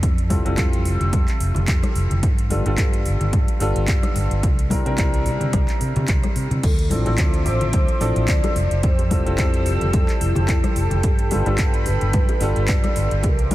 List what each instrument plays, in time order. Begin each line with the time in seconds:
0.03 fingered electric bass F2, kick, closed hi-hat
0.18 closed hi-hat
0.29 fingered electric bass F1, grand piano G3 C4 E4 F4 A4, kick, open hi-hat, high conga
0.45 fingered electric bass F1, grand piano G3 C4 E4 F4 A4, closed hi-hat
0.57 fingered electric bass F2, grand piano G3 C4 E4 F4 A4, kick, clap, closed hi-hat
0.73 closed hi-hat
0.85 fingered electric bass F1, open hi-hat
1.01 fingered electric bass F1, closed hi-hat, low conga
1.12 fingered electric bass F2, kick, closed hi-hat, high conga
1.28 clap, closed hi-hat
1.40 fingered electric bass F1, open hi-hat
1.55 fingered electric bass F1, closed hi-hat, low conga
1.68 fingered electric bass F2, kick, clap, closed hi-hat
1.83 cross-stick, closed hi-hat, high conga
1.95 fingered electric bass F1, open hi-hat
2.10 fingered electric bass F1, closed hi-hat, low conga
2.23 fingered electric bass G2, kick, closed hi-hat
2.38 closed hi-hat
2.50 fingered electric bass G1, grand piano G3 B3 D4 F4 A4, open hi-hat, high conga
2.65 fingered electric bass G1, grand piano G3 B3 D4 F4 A4, closed hi-hat
2.77 fingered electric bass G2, grand piano G3 A4, kick, clap, closed hi-hat
2.93 closed hi-hat
3.05 fingered electric bass G1, open hi-hat
3.21 fingered electric bass G1, closed hi-hat, low conga
3.32 fingered electric bass G2, kick, closed hi-hat, high conga
3.48 closed hi-hat
3.60 fingered electric bass G1, grand piano G3 B3 D4 F4 A4, open hi-hat
3.76 fingered electric bass G1, closed hi-hat
3.88 fingered electric bass G2, kick, clap, closed hi-hat
4.03 cross-stick, closed hi-hat, high conga
4.16 fingered electric bass G1, open hi-hat
4.31 fingered electric bass G1, closed hi-hat
4.43 fingered electric bass C2, kick, closed hi-hat
4.59 closed hi-hat
4.70 fingered electric bass C3, grand piano G3 C4 D4 E4 A#4, kick, open hi-hat, high conga
4.85 fingered electric bass C3, grand piano G3 C4 D4 E4 A#4, closed hi-hat
4.98 fingered electric bass C2, grand piano G3 C4 D4 E4 A#4, kick, clap, closed hi-hat
5.14 closed hi-hat
5.26 fingered electric bass C3, open hi-hat
5.40 fingered electric bass C3, closed hi-hat, low conga
5.53 fingered electric bass C2, kick, cross-stick, closed hi-hat, high conga
5.68 clap, closed hi-hat
5.81 fingered electric bass C3, open hi-hat
5.96 fingered electric bass C3, closed hi-hat, low conga
6.08 fingered electric bass C2, kick, clap, closed hi-hat
6.24 cross-stick, closed hi-hat, high conga
6.36 fingered electric bass C3, open hi-hat
6.51 fingered electric bass C3, closed hi-hat, low conga
6.63 fingered electric bass D2, vibraphone A4, analog synth pad C5 E5 D6, kick, closed hi-hat, crash
6.79 closed hi-hat
6.90 fingered electric bass A1, grand piano F3 C4 D4 E4 A4, open hi-hat, high conga
7.05 fingered electric bass A1, grand piano F3 C4 D4 E4 A4, closed hi-hat, high bongo
7.18 fingered electric bass D2, grand piano F3, kick, clap, closed hi-hat
7.34 closed hi-hat
7.46 fingered electric bass A1, vibraphone C5, open hi-hat, high bongo
7.61 fingered electric bass A1, closed hi-hat, low conga
7.73 fingered electric bass D2, vibraphone C5, kick, closed hi-hat, high conga
7.88 closed hi-hat
8.00 fingered electric bass A1, grand piano F3 C4 D4 E4 A4, open hi-hat, high bongo
8.16 fingered electric bass A1, closed hi-hat
8.28 fingered electric bass D2, vibraphone D5, kick, clap, closed hi-hat
8.44 cross-stick, closed hi-hat, high bongo, high conga
8.56 fingered electric bass F1, analog synth pad A4 G5 E6, vibraphone D5, open hi-hat
8.71 fingered electric bass F1, closed hi-hat
8.83 fingered electric bass F2, vibraphone C5, kick, closed hi-hat
8.99 closed hi-hat, high bongo
9.10 fingered electric bass F1, grand piano G3 C4 E4 F4 A4, kick, open hi-hat, high conga
9.26 fingered electric bass F1, grand piano G3 C4 E4 F4 A4, closed hi-hat
9.37 fingered electric bass F2, grand piano F3 G3 C4 E4 A4, kick, clap, closed hi-hat, high bongo
9.54 closed hi-hat
9.66 fingered electric bass F1, vibraphone G4, open hi-hat
9.81 fingered electric bass F1, closed hi-hat, low conga
9.93 fingered electric bass F2, kick, closed hi-hat, high bongo, high conga
10.09 muted fingered electric bass stroke, clap, closed hi-hat
10.21 fingered electric bass F1, vibraphone E4, open hi-hat
10.35 fingered electric bass F1, closed hi-hat, high bongo, low conga
10.48 fingered electric bass F2, kick, clap, closed hi-hat
10.64 cross-stick, closed hi-hat, high conga
10.76 fingered electric bass F1, vibraphone G4, open hi-hat
10.91 fingered electric bass F1, closed hi-hat, high bongo, low conga
10.97 vibraphone A4
11.03 fingered electric bass G2, vibraphone G4, analog synth pad B5, kick, closed hi-hat
11.19 closed hi-hat
11.31 fingered electric bass G1, grand piano G3 B3 D4 F4 A4, open hi-hat, high bongo, high conga
11.46 fingered electric bass G1, grand piano G3 B3 D4 F4 A4, closed hi-hat
11.57 grand piano G3 B3 D4 A4, kick, clap, closed hi-hat
11.74 closed hi-hat
11.86 fingered electric bass G1, vibraphone B4, open hi-hat, high bongo
12.01 fingered electric bass G1, closed hi-hat, low conga
12.13 fingered electric bass G2, vibraphone B4, kick, closed hi-hat, high conga
12.29 closed hi-hat, high bongo
12.40 fingered electric bass G1, grand piano G3 B3 D4 F4 A4, open hi-hat
12.56 fingered electric bass G1, closed hi-hat
12.68 fingered electric bass G2, vibraphone D5, kick, clap, closed hi-hat
12.84 cross-stick, closed hi-hat, high bongo, high conga
12.96 fingered electric bass G1, vibraphone D5, open hi-hat
13.11 fingered electric bass G1, closed hi-hat
13.23 fingered electric bass C2, vibraphone A#4, analog synth pad C5 E5 A#5 D6, kick, closed hi-hat, high bongo
13.39 closed hi-hat
13.51 fingered electric bass C3, grand piano G3 C4 D4 E4 A#4, kick, open hi-hat, high conga